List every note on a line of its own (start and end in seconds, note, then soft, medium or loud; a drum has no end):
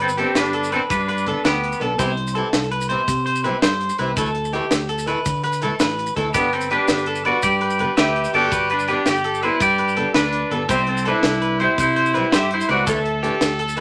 0.00 0.23 G1 medium
0.00 0.06 C4 medium
0.00 0.10 C4 medium
0.00 0.06 A4 medium
0.00 0.16 B4 medium
0.09 maracas medium
0.17 0.29 B3 medium
0.17 0.35 C4 medium
0.17 0.36 C4 medium
0.17 0.29 D4 medium
0.17 0.52 G4 medium
0.17 0.35 A4 medium
0.17 0.30 A4 medium
0.17 closed hi-hat soft
0.35 0.78 G1 medium
0.35 0.70 D4 medium
0.35 0.71 D4 medium
0.35 0.73 B4 medium
0.35 snare medium
0.35 closed hi-hat medium
0.35 maracas medium
0.53 0.71 A4 medium
0.53 closed hi-hat soft
0.64 maracas medium
0.72 0.83 B3 medium
0.72 0.78 C4 medium
0.72 0.82 C4 medium
0.72 0.84 D4 medium
0.72 0.78 A4 medium
0.72 0.84 A4 medium
0.72 1.07 B4 medium
0.72 closed hi-hat soft
0.90 1.28 G2 medium
0.90 1.41 D4 medium
0.90 1.42 D4 medium
0.90 1.41 B4 medium
0.90 kick medium
0.90 closed hi-hat medium
0.90 maracas medium
1.09 1.26 B4 medium
1.09 closed hi-hat medium
1.18 maracas medium
1.26 1.34 G1 medium
1.26 1.37 B3 medium
1.26 1.38 D4 medium
1.26 1.44 A4 medium
1.26 1.38 A4 medium
1.26 closed hi-hat soft
1.45 1.73 D2 medium
1.45 1.83 B3 medium
1.45 1.84 B3 medium
1.45 1.84 G4 medium
1.45 1.79 B4 medium
1.45 snare medium
1.45 closed hi-hat medium
1.45 maracas medium
1.64 closed hi-hat soft
1.72 maracas medium
1.80 1.95 B1 medium
1.80 1.91 B3 medium
1.80 1.92 D4 medium
1.80 1.92 A4 medium
1.80 1.99 A4 medium
1.80 closed hi-hat soft
1.98 2.41 C2 medium
1.98 2.10 E3 medium
1.98 2.10 C4 medium
1.98 2.10 E4 medium
1.98 2.10 G4 medium
1.98 2.34 C5 medium
1.98 kick medium
1.98 closed hi-hat medium
1.98 maracas medium
2.17 closed hi-hat soft
2.27 maracas medium
2.35 2.46 E3 medium
2.35 2.47 C4 medium
2.35 2.47 E4 medium
2.35 2.47 G4 medium
2.35 2.70 A4 medium
2.35 closed hi-hat soft
2.53 2.95 C2 medium
2.53 snare medium
2.53 closed hi-hat medium
2.53 maracas medium
2.63 maracas soft
2.71 2.89 B4 medium
2.71 closed hi-hat medium
2.81 maracas medium
2.89 3.00 E3 medium
2.89 3.01 C4 medium
2.89 3.01 E4 medium
2.89 3.01 G4 medium
2.89 3.24 C5 medium
2.89 closed hi-hat soft
3.08 3.46 C3 medium
3.08 kick medium
3.08 closed hi-hat medium
3.08 maracas medium
3.26 3.43 C5 medium
3.26 closed hi-hat medium
3.35 maracas medium
3.44 3.51 C2 medium
3.44 3.55 E3 medium
3.44 3.55 C4 medium
3.44 3.56 E4 medium
3.44 3.56 G4 medium
3.44 3.61 B4 medium
3.44 closed hi-hat medium
3.62 3.90 G2 medium
3.62 3.97 C5 medium
3.62 snare loud
3.62 closed hi-hat medium
3.62 maracas medium
3.81 closed hi-hat soft
3.89 maracas medium
3.98 4.13 C2 medium
3.98 4.09 E3 medium
3.98 4.10 C4 medium
3.98 4.10 E4 medium
3.98 4.10 G4 medium
3.98 4.16 B4 medium
3.98 closed hi-hat soft
4.17 4.59 D2 medium
4.17 4.28 E3 medium
4.17 4.28 A3 medium
4.17 4.28 E4 medium
4.17 4.52 A4 medium
4.17 4.29 A4 medium
4.17 kick medium
4.17 closed hi-hat medium
4.17 maracas medium
4.26 maracas soft
4.35 closed hi-hat soft
4.45 maracas medium
4.53 4.64 E3 medium
4.53 4.64 A3 medium
4.53 4.64 E4 medium
4.53 4.88 G4 medium
4.53 4.65 A4 medium
4.53 closed hi-hat soft
4.71 5.14 D2 medium
4.71 snare medium
4.71 closed hi-hat medium
4.71 maracas medium
4.89 5.06 A4 medium
4.89 closed hi-hat medium
4.98 maracas medium
5.06 5.18 E3 medium
5.06 5.18 A3 medium
5.06 5.18 E4 medium
5.06 5.19 A4 medium
5.06 5.42 B4 medium
5.06 closed hi-hat soft
5.06 maracas soft
5.25 5.64 D3 medium
5.25 kick medium
5.25 closed hi-hat medium
5.25 maracas medium
5.44 5.61 B4 medium
5.44 closed hi-hat soft
5.44 maracas soft
5.52 maracas medium
5.62 5.69 D2 medium
5.62 5.73 E3 medium
5.62 5.73 A3 medium
5.62 5.73 E4 medium
5.62 5.80 A4 medium
5.62 5.73 A4 medium
5.62 closed hi-hat soft
5.62 maracas soft
5.79 6.09 A1 medium
5.79 6.15 B4 medium
5.79 snare medium
5.79 closed hi-hat medium
5.79 maracas medium
5.89 maracas soft
5.98 closed hi-hat soft
5.98 maracas soft
6.06 maracas medium
6.16 6.30 D2 medium
6.16 6.27 E3 medium
6.16 6.27 A3 medium
6.16 6.28 E4 medium
6.16 6.33 A4 medium
6.16 6.28 A4 medium
6.16 kick medium
6.16 closed hi-hat soft
6.34 6.76 G1 medium
6.34 6.45 G3 medium
6.34 6.51 B3 medium
6.34 6.56 B3 medium
6.34 6.46 D4 medium
6.34 6.53 G4 medium
6.34 6.46 A4 medium
6.34 6.69 B4 medium
6.34 muted steel-string acoustic guitar stroke medium
6.34 kick medium
6.34 closed hi-hat medium
6.34 maracas loud
6.53 6.70 C4 medium
6.53 6.71 C4 medium
6.53 6.71 A4 medium
6.53 closed hi-hat soft
6.61 maracas medium
6.70 6.81 G3 medium
6.70 6.81 B3 medium
6.70 6.82 D4 medium
6.70 7.22 D4 medium
6.70 7.05 G4 medium
6.70 6.82 A4 medium
6.70 7.22 B4 medium
6.70 closed hi-hat soft
6.88 7.31 G1 medium
6.88 snare medium
6.88 closed hi-hat medium
6.88 maracas medium
6.98 maracas soft
7.06 7.24 A4 medium
7.06 closed hi-hat medium
7.15 maracas medium
7.25 7.36 G3 medium
7.25 7.36 B3 medium
7.25 7.37 D4 medium
7.25 7.43 F#4 medium
7.25 7.37 A4 medium
7.25 7.60 B4 medium
7.25 7.42 D5 medium
7.25 closed hi-hat soft
7.42 7.81 G2 medium
7.42 7.94 G4 medium
7.42 7.95 G4 medium
7.42 7.93 D5 medium
7.42 kick medium
7.42 closed hi-hat medium
7.42 maracas medium
7.61 7.79 B4 medium
7.61 closed hi-hat soft
7.70 maracas medium
7.79 7.87 G1 medium
7.79 7.90 G3 medium
7.79 7.91 B3 medium
7.79 7.91 D4 medium
7.79 7.97 B4 medium
7.79 muted steel-string acoustic guitar stroke medium
7.79 closed hi-hat soft
7.97 8.26 D2 medium
7.97 8.32 G4 medium
7.97 8.33 G4 medium
7.97 8.32 B4 medium
7.97 8.34 E5 medium
7.97 snare loud
7.97 closed hi-hat medium
7.97 maracas medium
8.16 closed hi-hat soft
8.24 maracas medium
8.33 8.48 G1 medium
8.33 8.44 G3 medium
8.33 8.45 B3 medium
8.33 8.45 D4 medium
8.33 8.69 F#4 medium
8.33 8.69 G4 medium
8.33 8.51 A4 medium
8.33 8.45 A4 medium
8.33 8.70 D5 medium
8.33 closed hi-hat soft
8.51 8.94 G1 medium
8.51 8.86 B4 medium
8.51 kick medium
8.51 closed hi-hat medium
8.51 maracas medium
8.70 8.88 D4 medium
8.70 8.87 B4 medium
8.70 closed hi-hat soft
8.79 maracas medium
8.88 8.99 G3 medium
8.88 9.00 B3 medium
8.88 8.95 D4 medium
8.88 9.00 D4 medium
8.88 9.07 D4 medium
8.88 9.23 G4 medium
8.88 9.00 A4 medium
8.88 8.94 B4 medium
8.88 closed hi-hat soft
9.06 9.48 G1 medium
9.06 9.40 G4 medium
9.06 9.44 G4 medium
9.06 9.43 D5 medium
9.06 snare medium
9.06 closed hi-hat medium
9.06 maracas medium
9.16 maracas soft
9.24 9.42 A4 medium
9.24 closed hi-hat medium
9.34 maracas medium
9.42 9.53 G3 medium
9.42 9.54 B3 medium
9.42 9.61 E4 medium
9.42 9.54 A4 medium
9.42 9.77 B4 medium
9.42 9.62 C5 medium
9.42 closed hi-hat soft
9.60 9.98 G2 medium
9.60 10.12 G4 medium
9.60 10.13 G4 medium
9.60 10.15 D5 medium
9.60 kick medium
9.60 closed hi-hat medium
9.60 maracas medium
9.78 9.96 B4 medium
9.78 closed hi-hat soft
9.88 maracas medium
9.97 10.04 G1 medium
9.97 10.08 G3 medium
9.97 10.08 B3 medium
9.97 10.08 D4 medium
9.97 10.14 A4 medium
9.97 muted steel-string acoustic guitar stroke medium
9.97 closed hi-hat soft
10.14 10.43 D2 medium
10.14 10.53 D4 medium
10.14 10.55 D4 medium
10.14 10.49 B4 medium
10.14 10.53 B4 medium
10.14 snare loud
10.14 closed hi-hat medium
10.14 maracas medium
10.33 closed hi-hat medium
10.51 10.65 G1 medium
10.51 10.62 G3 medium
10.51 10.62 B3 medium
10.51 10.63 D4 medium
10.51 10.69 A4 medium
10.51 10.63 A4 medium
10.51 closed hi-hat soft
10.68 11.11 C2 medium
10.68 10.80 G3 medium
10.68 10.80 C4 medium
10.68 10.86 C4 medium
10.68 10.88 C4 medium
10.68 10.80 E4 medium
10.68 10.81 G4 medium
10.68 10.86 G4 medium
10.68 11.04 C5 medium
10.68 kick medium
10.68 closed hi-hat medium
10.68 maracas medium
10.87 11.05 C4 medium
10.87 11.06 C4 medium
10.87 11.07 A4 medium
10.87 closed hi-hat soft
10.97 maracas medium
11.05 11.17 G3 medium
11.05 11.17 C4 medium
11.05 11.58 D4 medium
11.05 11.17 E4 medium
11.05 11.18 G4 medium
11.05 11.40 A4 medium
11.05 11.61 B4 medium
11.05 closed hi-hat soft
11.10 11.58 E4 medium
11.23 11.66 C2 medium
11.23 snare medium
11.23 closed hi-hat medium
11.23 maracas medium
11.33 maracas soft
11.42 11.59 B4 medium
11.42 closed hi-hat soft
11.60 11.71 G3 medium
11.60 11.71 C4 soft
11.60 11.71 E4 medium
11.60 11.78 E4 medium
11.60 11.72 G4 medium
11.60 11.95 C5 medium
11.60 11.79 C5 medium
11.60 closed hi-hat soft
11.78 12.17 C3 medium
11.78 12.30 E4 medium
11.78 12.30 C5 medium
11.78 kick medium
11.78 closed hi-hat medium
11.78 maracas medium
11.96 12.14 C5 medium
11.96 closed hi-hat soft
12.06 maracas medium
12.13 12.22 C2 medium
12.13 12.25 G3 medium
12.13 12.25 C4 medium
12.13 12.25 E4 medium
12.13 12.26 G4 medium
12.13 12.32 B4 medium
12.13 closed hi-hat soft
12.32 12.61 G2 medium
12.32 12.50 G4 medium
12.32 12.51 G4 medium
12.32 12.67 C5 medium
12.32 snare loud
12.32 closed hi-hat medium
12.32 maracas medium
12.36 12.53 E5 medium
12.51 12.69 E4 medium
12.51 12.71 C5 medium
12.51 closed hi-hat soft
12.61 maracas medium
12.69 12.83 C#2 medium
12.69 12.80 G3 medium
12.69 12.80 C4 medium
12.69 12.80 E4 medium
12.69 12.87 F#4 medium
12.69 12.90 F#4 medium
12.69 12.81 G4 medium
12.69 12.86 B4 medium
12.69 12.90 D5 medium
12.69 closed hi-hat soft
12.86 13.29 D2 medium
12.86 12.98 E3 medium
12.86 12.98 A3 medium
12.86 12.99 D4 medium
12.86 13.21 A4 medium
12.86 13.80 A4 medium
12.86 12.99 A4 medium
12.86 13.80 A4 medium
12.86 13.80 E5 medium
12.86 kick medium
12.86 closed hi-hat medium
12.86 maracas medium
13.05 closed hi-hat soft
13.23 13.34 E3 medium
13.23 13.34 A3 medium
13.23 13.35 D4 medium
13.23 13.58 G4 medium
13.23 13.35 A4 medium
13.23 closed hi-hat medium
13.41 13.80 D2 medium
13.41 snare medium
13.41 closed hi-hat medium
13.41 maracas medium
13.59 13.77 A4 medium
13.59 closed hi-hat medium
13.69 maracas medium
13.77 13.80 E3 medium
13.77 closed hi-hat soft